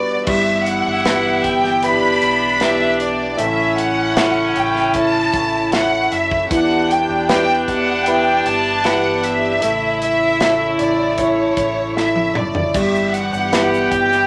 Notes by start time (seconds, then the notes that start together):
Already playing: G3 B3 D4 F#4 B4 D5
0.26 G1 E3 G3 B3 E4 G4 E5, kick, crash
0.66 F#5, closed hi-hat
0.86 G1
1.05 E4 G4 B4, snare, closed hi-hat
1.44 G1 G5, kick, closed hi-hat
1.64 snare
1.83 D4 E4 G4 B4 B5, closed hi-hat
2.22 B1, closed hi-hat
2.60 E4 G4 B4 E5, snare, closed hi-hat
3.00 D5, closed hi-hat
3.37 A1 C#3 A3 C#4 E4 E5, closed hi-hat
3.78 F#5, closed hi-hat
4.16 E4 A4 C#5, snare, closed hi-hat
4.56 A1 G5, closed hi-hat
4.76 snare
4.94 E4 A4 C#5 A5, kick, closed hi-hat
5.33 A1, kick, closed hi-hat
5.72 E4 A4 C#5 F#5, snare, closed hi-hat
6.12 F#1 E5, closed hi-hat
6.31 kick
6.42 C#4
6.49 E1 E3 B3 D4 G4 F#5, kick, closed hi-hat
6.91 G5, closed hi-hat
7.09 E1
7.28 E4 G4 B4 G5, snare, closed hi-hat
7.63 G5
7.68 E1 F#5, kick, closed hi-hat
8.06 E4 G4 B4 G5, closed hi-hat
8.46 G1 A5, closed hi-hat
8.84 E4 G4 B4 F#5, snare, closed hi-hat
9.24 E5, closed hi-hat
9.62 A1 C#3 A3 E4, closed hi-hat
10.02 E5, closed hi-hat
10.41 E4 A4 E5, snare, closed hi-hat
10.79 A1 D5, closed hi-hat
11.18 E4 A4 C#5, kick, closed hi-hat
11.57 A1, kick, closed hi-hat
11.97 E4 A4 E5, snare
12.16 high tom
12.35 F#1 D5, mid tom
12.55 floor tom
12.74 G1 E3 G3 B3 G4 E5, kick, crash, shaker
12.95 shaker
13.14 F#5, closed hi-hat, shaker
13.32 G1, shaker
13.52 E4 G4 B4, snare, closed hi-hat, shaker
13.74 shaker
13.91 G1 G5, kick, closed hi-hat, shaker
14.12 snare, shaker